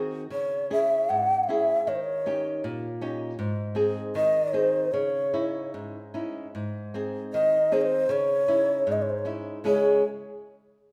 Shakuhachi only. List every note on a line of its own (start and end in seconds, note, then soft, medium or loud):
0.32 0.68 C#5 medium
0.72 1.11 E5 medium
1.09 1.43 F#5 medium
1.43 1.49 F#5 medium
1.48 1.90 E5 medium
1.88 1.97 C#5 medium
1.95 2.05 C5 medium
2.04 2.65 C#5 medium
4.16 4.55 D#5 loud
4.54 4.93 C5 medium
4.92 5.73 C#5 medium
7.33 7.75 D#5 medium
7.73 7.83 C5 medium
7.81 7.87 C#5 medium
7.86 8.13 C5 loud
8.11 8.93 C#5 loud
8.92 9.04 D#5 medium
9.02 9.11 C#5 medium
9.09 9.20 C5 medium
9.18 9.27 C#5 medium
9.66 10.03 C#5 medium